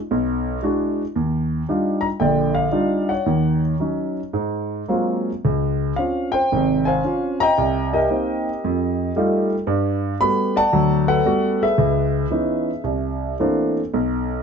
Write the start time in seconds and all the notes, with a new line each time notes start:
0.11 B1
0.63 G#3 D4 E4 F#4
1.16 D#2
1.69 G3 D4 D#4 F4
2.01 A#5
2.20 A#1 D3 D5 G5
2.55 F5
2.72 G3 D4 D#4 F4
3.09 C#5 F#5
3.26 D#2 D#3
3.80 F#3 C#4 D#4
4.33 G#2
4.88 F#3 G#3 A#3 C4 F4
5.45 C#2
5.96 C4 C#4 F4 F5
6.32 C5 G5
6.52 G#1 C3
6.85 C5 F5 G#5
7.04 C4 C#4 F4
7.40 D#5 G5 A#5
7.58 C2
7.93 G4 A#4 D#5
8.10 A#3 C4 D#4
8.64 F2
9.16 G3 A3 D#4 F4
9.67 G2
10.21 G3 A3 B3 F#4 B5
10.56 D5 F#5 A5
10.73 D2 F#3
11.08 A4 B4 F#5
11.25 G3 A3 B3 F#4
11.63 G#4 B4 E5
11.78 C#2
12.30 E3 B3 C#4 D#4
12.84 C2
13.40 E3 A3 A#3 C4 D4
13.94 B1